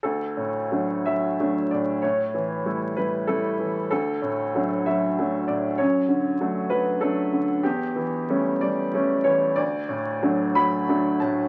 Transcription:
<<
  \new Staff \with { instrumentName = "Grand piano" } { \time 3/4 \key d \major \tempo 4 = 95 a'4. e''4 d''8 | cis''4. b'8 a'4 | a'4. e''4 d''8 | cis''4. b'8 a'4 |
g'4. d''4 cis''8 | d''4. b''4 a''8 | }
  \new Staff \with { instrumentName = "Grand piano" } { \clef bass \time 3/4 \key d \major d,8 a,8 <fis a d'>8 fis8 <fis a d'>8 a,8 | a,8 e8 <g a e'>8 g8 <g a e'>8 e8 | d,8 a,8 <fis a d'>8 fis8 <fis a d'>8 a,8 | fis,8 d8 <fis a d'>8 fis8 <fis a d'>8 d8 |
e,8 e8 <g a cis'>8 g8 <g a cis'>8 e8 | d,8 a,8 <fis a d'>8 fis8 <fis a d'>8 a,8 | }
>>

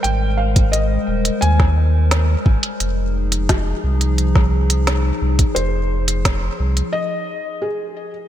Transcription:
<<
  \new Staff \with { instrumentName = "Felt piano" } { \time 4/4 \key f \dorian \tempo 4 = 87 g''8 f''8 ees''4 aes''4. r8 | r1 | c''2 ees''4 aes'8. r16 | }
  \new Staff \with { instrumentName = "Ambient pad" } { \time 4/4 \key f \dorian <g aes bes' c''>1 | <f ees' aes'>1~ | <f ees' aes'>2 r2 | }
  \new Staff \with { instrumentName = "Sub bass" } { \clef bass \time 4/4 \key f \dorian aes,,4. ees,,8 ees,4. aes,,8 | f,,4. c,2 c,8 | f,,4. c,8 r2 | }
  \new DrumStaff \with { instrumentName = "Drums" } \drummode { \time 4/4 hh8. <hh bd>16 hh8. hh16 hh16 <bd sn>8. <hh sn>8 bd16 hh16 | hh8. hh16 <hh bd sn>8. hh16 hh16 <bd sn>8 hh16 <hh sn>8. <hh bd>16 | hh8. hh16 <hh bd sn>8. hh16 r4 r4 | }
>>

